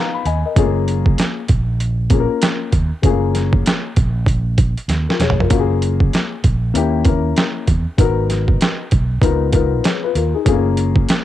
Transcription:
0.00 0.23 B3 medium
0.00 0.23 D#4 medium
0.00 0.24 F4 medium
0.00 0.24 F5 soft
0.00 0.13 A#5 medium
0.14 0.54 B5 medium
0.25 0.43 D#2 medium
0.25 0.44 D#5 medium
0.25 0.44 G#5 medium
0.25 closed hi-hat medium
0.46 0.75 A#4 medium
0.46 0.74 D#5 medium
0.56 1.14 F#1 loud
0.56 0.64 A3 medium
0.56 1.38 C#4 medium
0.56 1.39 F4 medium
0.56 1.39 G#4 medium
0.56 kick loud
0.56 closed hi-hat medium
0.62 1.41 A#3 medium
0.88 closed hi-hat medium
1.06 kick medium
1.18 snare medium
1.18 closed hi-hat medium
1.48 2.26 A#1 medium
1.48 kick medium
1.48 closed hi-hat medium
1.80 closed hi-hat medium
2.10 2.70 A#3 medium
2.10 2.71 C#4 medium
2.10 2.71 F4 medium
2.10 2.20 G#4 medium
2.10 kick medium
2.10 closed hi-hat medium
2.20 2.75 A#4 medium
2.41 snare loud
2.41 closed hi-hat medium
2.72 2.90 D#2 medium
2.72 kick medium
2.72 closed hi-hat medium
3.02 3.61 F#1 medium
3.02 3.11 A3 medium
3.02 3.86 C#4 medium
3.02 3.86 F4 medium
3.02 3.87 G#4 medium
3.02 kick loud
3.02 closed hi-hat medium
3.09 3.88 A#3 medium
3.35 snare soft
3.35 closed hi-hat medium
3.53 kick medium
3.66 snare loud
3.66 closed hi-hat medium
3.96 4.74 A#1 medium
3.96 kick medium
3.96 closed hi-hat medium
4.26 kick medium
4.26 closed hi-hat medium
4.58 kick medium
4.58 closed hi-hat medium
4.78 closed hi-hat soft
4.88 5.06 D#2 medium
4.88 snare medium
4.88 closed hi-hat medium
5.09 5.20 F4 medium
5.09 5.20 A#4 medium
5.09 snare medium
5.20 5.37 E1 medium
5.20 5.39 G#4 medium
5.20 5.39 C#5 medium
5.20 snare medium
5.20 closed hi-hat medium
5.30 floor tom medium
5.39 5.50 F1 medium
5.39 5.51 F4 soft
5.39 5.69 A#4 medium
5.39 floor tom medium
5.50 6.09 F#1 loud
5.50 6.33 A#3 medium
5.50 6.33 C#4 medium
5.50 6.34 F4 medium
5.50 5.60 F#4 medium
5.50 kick loud
5.50 closed hi-hat medium
5.60 6.37 G#4 medium
5.82 closed hi-hat medium
6.01 kick medium
6.14 snare medium
6.14 closed hi-hat medium
6.44 6.72 A#1 medium
6.44 kick medium
6.44 closed hi-hat medium
6.74 7.32 D#2 medium
6.74 7.01 A#3 medium
6.74 7.01 C#4 medium
6.74 7.01 E4 medium
6.74 7.02 G4 medium
6.74 closed hi-hat medium
7.05 7.65 A#3 medium
7.05 7.66 C#4 medium
7.05 7.66 E4 medium
7.05 7.66 A#4 medium
7.05 kick medium
7.05 closed hi-hat medium
7.37 snare medium
7.37 closed hi-hat medium
7.68 7.85 E2 medium
7.68 kick medium
7.68 closed hi-hat medium
7.98 8.56 G#1 loud
7.98 8.80 B3 medium
7.98 8.81 D#4 medium
7.98 8.81 F#4 medium
7.98 8.81 A#4 medium
7.98 kick loud
7.98 closed hi-hat medium
8.30 snare soft
8.30 closed hi-hat medium
8.48 kick medium
8.61 snare loud
8.61 closed hi-hat medium
8.91 9.20 B1 medium
8.91 kick medium
8.91 closed hi-hat medium
9.21 9.80 C#2 medium
9.21 9.48 B3 medium
9.21 9.48 D#4 medium
9.21 9.49 F4 medium
9.21 9.49 A#4 medium
9.21 kick medium
9.21 closed hi-hat medium
9.52 10.12 B3 medium
9.52 9.84 D#4 medium
9.52 9.85 F4 medium
9.52 9.85 A#4 medium
9.52 kick medium
9.52 closed hi-hat medium
9.84 10.03 G#4 soft
9.84 10.02 C#5 medium
9.84 snare loud
9.84 closed hi-hat medium
10.04 10.15 F4 medium
10.04 10.15 B4 medium
10.15 10.33 D#2 medium
10.15 10.34 F4 medium
10.15 10.34 A#4 medium
10.15 closed hi-hat medium
10.34 10.64 D#4 medium
10.34 10.46 G#4 medium
10.45 11.04 F#1 loud
10.45 10.53 A3 medium
10.45 11.24 C#4 medium
10.45 11.24 F4 medium
10.45 11.24 G#4 medium
10.45 kick loud
10.45 closed hi-hat medium
10.52 11.24 A#3 medium
10.77 closed hi-hat medium
10.96 kick medium
11.08 snare medium
11.08 closed hi-hat medium

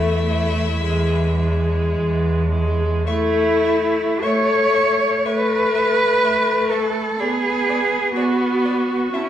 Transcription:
0.00 0.69 E2 medium
0.00 0.24 A3 medium
0.00 1.94 E4 medium
0.00 1.94 E5 medium
0.25 0.79 A3 medium
0.80 1.81 E2 medium
0.80 1.36 G#3 medium
1.37 2.48 G#3 medium
1.95 2.94 E2 medium
2.51 3.05 G#3 medium
3.06 4.08 A3 medium
3.06 4.24 E4 medium
3.06 3.15 E5 medium
3.06 3.15 C#6 medium
3.64 3.72 E5 medium
3.64 3.73 C#6 medium
4.22 5.13 A3 medium
4.22 5.27 C#5 medium
4.22 4.30 E5 medium
4.22 4.31 C#6 medium
4.74 4.82 E5 medium
4.74 4.82 C#6 medium
5.25 6.11 A3 medium
5.25 6.73 B4 medium
5.25 5.33 E5 medium
5.25 5.34 C#6 medium
5.74 5.83 E5 medium
5.74 5.82 C#6 medium
6.23 7.08 A3 medium
6.23 6.32 E5 medium
6.23 6.31 C#6 medium
6.70 7.21 A4 medium
6.70 6.80 E5 medium
6.70 6.78 C#6 medium
7.18 8.04 B3 medium
7.18 8.15 G#4 medium
7.18 7.28 D5 medium
7.18 7.26 B5 medium
7.68 7.77 D5 medium
7.68 7.76 B5 soft
8.15 9.01 B3 medium
8.15 9.16 F#4 medium
8.15 8.24 D5 medium
8.15 8.23 B5 medium
8.65 8.73 D5 soft
8.65 8.73 B5 medium
9.12 9.29 C#4 medium
9.12 9.29 E4 medium
9.12 9.21 E5 medium
9.12 9.22 A5 medium

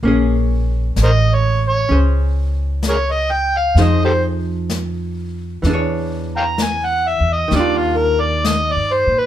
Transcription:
0.03 0.93 A#1 medium
0.03 3.76 A#3 soft
0.03 1.88 C#4 soft
0.03 brush sweep soft
0.07 1.90 G#4 soft
0.96 1.86 A1 medium
0.96 brush sweep soft
0.96 snare soft
0.96 hi-hat pedal medium
1.03 1.11 A#4 medium
1.03 1.10 C5 medium
1.03 1.36 D#5 medium
1.35 1.63 C#5 medium
1.68 1.96 C#5 medium
1.89 3.73 C#2 medium
1.89 3.76 C#4 soft
1.89 3.77 G#4 soft
1.89 3.78 C5 soft
1.89 brush sweep soft
2.83 brush sweep soft
2.83 snare soft
2.83 hi-hat pedal medium
2.89 2.97 G#4 soft
2.89 2.97 A#4 soft
2.89 3.13 C#5 medium
3.12 3.33 D#5 medium
3.31 3.59 G5 medium
3.57 3.84 F5 medium
3.75 5.59 F2 medium
3.75 5.62 F3 soft
3.75 5.65 D#4 soft
3.75 5.65 G#4 medium
3.75 brush sweep soft
3.75 snare soft
3.79 5.65 C5 soft
3.79 4.04 D#5 medium
4.05 4.13 G4 soft
4.05 4.13 A4 soft
4.05 4.24 C5 medium
4.70 brush sweep soft
4.70 snare soft
4.70 hi-hat pedal soft
5.62 7.16 E2 medium
5.62 7.48 E3 soft
5.62 brush sweep soft
5.62 snare soft
5.67 7.54 D4 soft
5.67 7.55 G#4 soft
5.73 7.57 C#5 medium
6.37 6.43 F5 medium
6.37 6.44 G5 medium
6.37 6.64 A#5 medium
6.58 brush sweep soft
6.58 snare soft
6.58 hi-hat pedal medium
6.63 6.87 G#5 medium
6.86 7.09 F#5 medium
7.08 7.34 E5 medium
7.20 7.50 E2 medium
7.33 7.57 D#5 medium
7.48 8.73 D#2 medium
7.48 9.26 D#3 soft
7.48 brush sweep soft
7.48 snare soft
7.53 9.26 G3 soft
7.53 9.26 D4 soft
7.53 7.79 D5 medium
7.59 9.26 F4 soft
7.78 7.98 F4 medium
7.97 8.22 A#4 medium
8.21 8.47 D5 medium
8.44 8.74 D#5 medium
8.44 brush sweep soft
8.44 snare soft
8.44 hi-hat pedal medium
8.72 8.95 D5 medium
8.76 9.06 G2 soft
8.93 9.20 C5 medium
9.07 9.26 A#2 medium
9.19 9.26 B4 medium

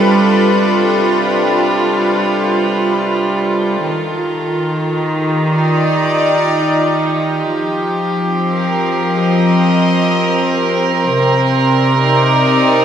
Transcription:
0.00 3.90 C3 medium
0.00 3.82 G3 medium
0.00 3.90 G3 medium
0.00 3.82 D4 medium
0.00 8.67 F4 medium
0.00 5.30 A4 medium
0.00 3.82 B4 medium
3.82 7.48 D#3 medium
4.93 8.65 D#4 medium
5.20 12.39 G4 medium
5.49 7.48 D5 medium
7.48 11.11 F3 medium
8.24 12.85 C4 medium
8.53 12.85 A#4 medium
9.11 11.11 D#5 medium
11.11 12.85 C3 medium
11.61 12.85 D5 medium
12.00 12.85 D#4 medium

